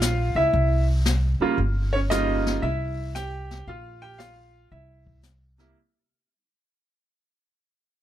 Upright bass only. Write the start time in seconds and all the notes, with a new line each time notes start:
Already playing: A#1
0.35 C#2
0.53 C2
1.40 muted upright bass stroke
1.58 G1
2.63 C2
3.67 A#1
4.72 C2